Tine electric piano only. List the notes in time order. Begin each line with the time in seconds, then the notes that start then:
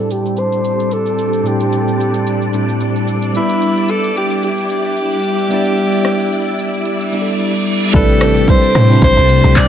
Already playing: A2 G3 C4 D4 E4 C5
1.43 A2 G3 C4 D4
1.48 E4 A4
2.53 A2 G3 C4 D4 E4 G4
3.33 G3 B3 D4 E4
3.38 B4
5.49 G3 B3 D4
5.53 E4 D5
7.12 G3 B3 D4 E4 G4
7.21 A4
7.93 G3 C4 D4 E4 B4
8.89 G3 C4 D4 E4 C5